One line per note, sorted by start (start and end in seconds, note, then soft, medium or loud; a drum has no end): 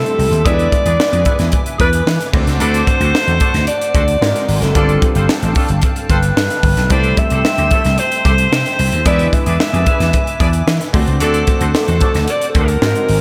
0.00 0.47 G3 medium
0.00 0.47 A3 medium
0.00 0.47 C4 medium
0.00 0.46 E4 medium
0.00 0.43 A4 medium
0.00 0.47 A4 medium
0.00 0.48 A4 loud
0.00 2.30 E5 medium
0.00 0.43 G5 medium
0.00 0.43 C6 medium
0.06 closed hi-hat medium
0.19 0.29 C2 medium
0.19 open hi-hat medium
0.31 0.42 D#2 medium
0.31 closed hi-hat medium
0.44 0.66 E2 loud
0.44 2.29 G#3 medium
0.44 2.30 B3 medium
0.44 2.30 D4 medium
0.44 0.67 E4 loud
0.44 2.30 E4 medium
0.44 0.67 G#4 loud
0.44 0.53 A4 medium
0.44 2.31 B4 medium
0.44 0.67 B4 loud
0.44 1.54 D5 loud
0.44 0.67 E5 loud
0.44 2.31 G#5 medium
0.44 4.18 D6 medium
0.44 kick loud
0.44 closed hi-hat loud
0.53 2.34 B4 medium
0.59 closed hi-hat soft
0.72 kick medium
0.72 closed hi-hat medium
0.86 0.96 E2 medium
0.86 0.97 D4 medium
0.86 0.97 G#4 medium
0.86 0.97 B4 medium
0.86 0.97 D5 medium
0.86 closed hi-hat medium
1.00 snare loud
1.13 1.23 F2 medium
1.13 1.23 D4 medium
1.13 1.24 G#4 medium
1.13 1.23 B4 medium
1.13 1.23 D5 medium
1.13 closed hi-hat medium
1.25 1.37 B3 medium
1.25 1.36 E4 medium
1.25 1.37 G#4 medium
1.25 1.37 B4 medium
1.25 kick medium
1.25 closed hi-hat medium
1.39 1.50 E2 medium
1.39 snare soft
1.39 closed hi-hat medium
1.52 kick medium
1.52 closed hi-hat medium
1.66 closed hi-hat medium
1.79 2.00 E2 medium
1.79 1.87 D4 medium
1.79 1.87 G#4 medium
1.79 1.87 B4 medium
1.79 2.31 B4 loud
1.79 1.87 D5 medium
1.79 kick medium
1.79 closed hi-hat medium
1.93 closed hi-hat medium
2.07 2.17 E3 medium
2.07 snare loud
2.21 snare soft
2.21 closed hi-hat medium
2.32 2.44 D2 medium
2.32 4.17 A3 medium
2.32 4.18 C4 medium
2.32 4.18 D4 medium
2.32 4.18 F#4 medium
2.32 4.20 C5 medium
2.32 4.19 C5 medium
2.32 4.73 F#5 medium
2.32 4.20 A5 medium
2.32 kick loud
2.32 crash medium
2.47 2.57 C#2 medium
2.47 snare soft
2.47 closed hi-hat medium
2.60 2.81 D2 loud
2.60 2.82 D4 loud
2.60 2.82 F#4 loud
2.60 2.82 A4 loud
2.60 3.64 C5 loud
2.60 2.82 D5 loud
2.60 closed hi-hat loud
2.74 closed hi-hat soft
2.87 kick medium
2.87 closed hi-hat medium
3.00 3.11 D2 medium
3.00 3.12 C4 medium
3.00 3.12 F#4 medium
3.00 3.12 A4 medium
3.00 3.12 C5 medium
3.00 closed hi-hat medium
3.15 snare loud
3.27 3.38 E2 medium
3.27 3.38 C4 medium
3.27 3.38 F#4 medium
3.27 3.38 A4 medium
3.27 3.38 C5 medium
3.27 closed hi-hat medium
3.40 3.52 A3 medium
3.40 3.52 D4 medium
3.40 3.52 F#4 medium
3.40 3.52 A4 medium
3.40 kick medium
3.40 closed hi-hat medium
3.54 3.65 D2 medium
3.54 snare soft
3.54 closed hi-hat soft
3.67 4.64 D5 loud
3.67 closed hi-hat medium
3.81 closed hi-hat soft
3.95 4.15 D2 medium
3.95 4.03 C4 medium
3.95 4.03 F#4 medium
3.95 4.03 A4 medium
3.95 4.03 C5 medium
3.95 kick medium
3.95 closed hi-hat medium
4.08 closed hi-hat medium
4.21 4.32 G#2 loud
4.21 4.75 G#3 medium
4.21 4.75 C4 medium
4.21 4.75 D#4 medium
4.21 4.75 F#4 medium
4.21 4.76 A#4 medium
4.21 4.75 A#4 medium
4.21 4.75 G#5 medium
4.21 4.75 C6 medium
4.21 snare loud
4.36 snare soft
4.36 closed hi-hat medium
4.49 4.59 G#1 medium
4.49 open hi-hat medium
4.62 4.72 F#1 medium
4.62 5.16 A4 medium
4.62 snare soft
4.62 closed hi-hat medium
4.75 4.96 G1 loud
4.75 6.86 G3 medium
4.75 4.82 B3 soft
4.75 4.97 D4 loud
4.75 6.87 D4 medium
4.75 4.97 F4 loud
4.75 6.87 F4 medium
4.75 9.01 A4 medium
4.75 4.97 A4 loud
4.75 6.87 A4 medium
4.75 4.97 D5 loud
4.75 6.88 F5 medium
4.75 6.88 G5 medium
4.75 6.88 A5 medium
4.75 kick loud
4.75 closed hi-hat loud
4.82 6.89 C4 medium
4.89 closed hi-hat soft
5.02 kick loud
5.02 closed hi-hat medium
5.15 5.26 G1 medium
5.15 5.27 C4 medium
5.15 5.27 F4 medium
5.15 5.26 A4 medium
5.15 5.27 C5 medium
5.15 closed hi-hat medium
5.29 snare loud
5.42 5.53 A1 medium
5.42 5.53 C4 medium
5.42 5.53 F4 medium
5.42 5.53 A4 medium
5.42 5.53 C5 medium
5.42 closed hi-hat soft
5.55 5.67 A3 medium
5.55 5.67 D4 medium
5.55 5.67 F4 medium
5.55 5.67 A4 medium
5.55 kick medium
5.55 open hi-hat medium
5.68 5.80 G1 medium
5.68 closed hi-hat medium
5.82 kick medium
5.82 closed hi-hat medium
5.96 closed hi-hat soft
6.10 6.30 G1 medium
6.10 6.18 C4 medium
6.10 6.18 F4 medium
6.10 6.18 A4 medium
6.10 6.93 B4 medium
6.10 6.18 C5 medium
6.10 kick medium
6.10 closed hi-hat medium
6.23 closed hi-hat medium
6.37 6.47 G2 loud
6.37 snare loud
6.50 snare soft
6.50 closed hi-hat medium
6.63 6.74 G1 medium
6.63 kick medium
6.63 open hi-hat medium
6.77 6.88 B1 medium
6.77 snare soft
6.77 closed hi-hat medium
6.89 7.11 C2 loud
6.89 9.01 G3 medium
6.89 9.01 A3 medium
6.89 9.01 C4 medium
6.89 7.13 D4 loud
6.89 9.02 E4 medium
6.89 7.13 G4 loud
6.89 9.02 A4 medium
6.89 7.13 B4 loud
6.89 7.20 C5 loud
6.89 7.13 D5 loud
6.89 10.90 E5 medium
6.89 9.03 G5 medium
6.89 9.03 C6 medium
6.89 kick loud
6.89 closed hi-hat loud
7.04 closed hi-hat soft
7.17 8.01 E5 loud
7.17 kick medium
7.17 closed hi-hat medium
7.30 7.42 C2 medium
7.30 7.42 C4 medium
7.30 7.42 G4 medium
7.30 7.42 A4 medium
7.30 7.42 C5 medium
7.30 closed hi-hat medium
7.45 snare loud
7.58 7.68 D2 medium
7.58 7.69 C4 medium
7.58 7.69 G4 medium
7.58 7.69 A4 medium
7.58 7.69 C5 medium
7.58 closed hi-hat soft
7.71 7.83 A3 medium
7.71 7.83 C4 medium
7.71 7.82 E4 medium
7.71 7.83 A4 medium
7.71 kick medium
7.71 closed hi-hat medium
7.85 7.95 C2 medium
7.85 snare soft
7.85 closed hi-hat medium
7.98 9.06 C5 loud
7.98 closed hi-hat medium
8.12 closed hi-hat medium
8.25 8.46 C2 medium
8.25 8.34 C4 medium
8.25 8.34 G4 medium
8.25 8.34 A4 medium
8.25 8.34 C5 medium
8.25 kick medium
8.25 closed hi-hat medium
8.38 closed hi-hat medium
8.52 8.62 C3 medium
8.52 snare loud
8.66 snare soft
8.66 closed hi-hat medium
8.79 8.89 C2 medium
8.79 open hi-hat medium
8.92 9.03 D#2 medium
8.92 closed hi-hat medium
9.05 9.27 E2 loud
9.05 10.90 G#3 medium
9.05 10.90 B3 medium
9.05 10.90 D4 medium
9.05 9.27 E4 loud
9.05 10.90 E4 medium
9.05 9.28 G#4 loud
9.05 9.27 B4 loud
9.05 10.92 B4 medium
9.05 10.91 B4 medium
9.05 9.35 D5 loud
9.05 9.27 E5 loud
9.05 10.92 G#5 medium
9.05 12.79 D6 medium
9.05 kick loud
9.05 closed hi-hat loud
9.19 closed hi-hat soft
9.33 10.94 E5 loud
9.33 kick medium
9.33 closed hi-hat medium
9.46 9.57 E2 medium
9.46 9.57 D4 medium
9.46 9.57 G#4 medium
9.46 9.57 B4 medium
9.46 9.57 D5 medium
9.46 closed hi-hat medium
9.60 snare loud
9.73 9.84 F2 medium
9.73 9.84 D4 medium
9.73 9.84 G#4 medium
9.73 9.84 B4 medium
9.73 9.84 D5 medium
9.73 closed hi-hat soft
9.86 9.98 B3 medium
9.86 9.98 E4 medium
9.86 9.97 G#4 medium
9.86 9.98 B4 medium
9.86 kick medium
9.86 closed hi-hat medium
10.00 10.10 E2 medium
10.00 snare soft
10.00 closed hi-hat medium
10.13 kick medium
10.13 closed hi-hat medium
10.27 closed hi-hat soft
10.40 10.61 E2 medium
10.40 10.48 D4 medium
10.40 10.48 G#4 medium
10.40 10.48 B4 medium
10.40 10.48 D5 loud
10.40 kick medium
10.40 closed hi-hat medium
10.53 closed hi-hat medium
10.67 10.78 E3 medium
10.67 snare loud
10.81 snare soft
10.81 closed hi-hat medium
10.93 11.04 D2 medium
10.93 12.78 A3 medium
10.93 12.78 C4 medium
10.93 12.79 D4 medium
10.93 12.79 F#4 medium
10.93 12.81 C5 medium
10.93 12.79 C5 medium
10.93 13.21 F#5 medium
10.93 12.81 A5 medium
10.93 kick loud
10.93 open hi-hat medium
11.07 11.18 C#2 medium
11.07 closed hi-hat medium
11.20 11.42 D2 loud
11.20 11.42 D4 loud
11.20 11.42 F#4 loud
11.20 11.42 A4 loud
11.20 11.71 A4 loud
11.20 11.42 D5 loud
11.20 closed hi-hat loud
11.34 closed hi-hat soft
11.47 kick loud
11.47 closed hi-hat medium
11.61 11.71 D2 medium
11.61 11.72 C4 medium
11.61 11.72 F#4 medium
11.61 11.72 A4 medium
11.61 11.72 C5 medium
11.61 closed hi-hat medium
11.75 12.32 A4 loud
11.75 snare loud
11.88 11.99 E2 medium
11.88 11.99 C4 medium
11.88 11.99 F#4 medium
11.88 11.99 A4 medium
11.88 11.99 C5 medium
11.88 closed hi-hat medium
12.00 12.13 A3 medium
12.00 12.13 D4 medium
12.00 12.13 F#4 medium
12.00 12.13 A4 medium
12.00 kick medium
12.00 closed hi-hat medium
12.15 12.25 D2 medium
12.15 snare soft
12.15 closed hi-hat medium
12.28 12.49 D5 loud
12.28 closed hi-hat medium
12.41 closed hi-hat medium
12.49 12.58 A4 medium
12.55 12.76 D2 medium
12.55 12.66 C4 medium
12.55 12.66 F#4 medium
12.55 12.66 A4 medium
12.55 13.21 A#4 loud
12.55 12.66 C5 medium
12.55 kick medium
12.55 closed hi-hat medium
12.68 closed hi-hat medium
12.82 12.92 G#2 loud
12.82 13.21 G#3 medium
12.82 13.21 C4 medium
12.82 13.21 D#4 medium
12.82 13.21 F#4 medium
12.82 13.21 A#4 medium
12.82 13.21 G#5 medium
12.82 13.21 C6 medium
12.82 snare loud
12.95 closed hi-hat medium
13.08 13.20 G#1 medium
13.08 open hi-hat medium